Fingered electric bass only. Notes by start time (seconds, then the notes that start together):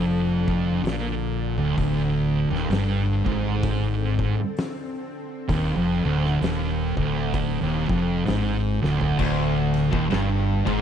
Already playing: F1
0.83 A#1
1.57 D1
1.78 D1
2.51 D#1
2.69 G1
3.26 G#1
5.49 D#1
5.76 F1
6.05 D1
6.42 D#1
6.97 D1
7.62 D#1
7.89 F1
8.28 G#1
8.84 D1
9.19 D1
9.93 D#1
10.13 G1
10.67 G#1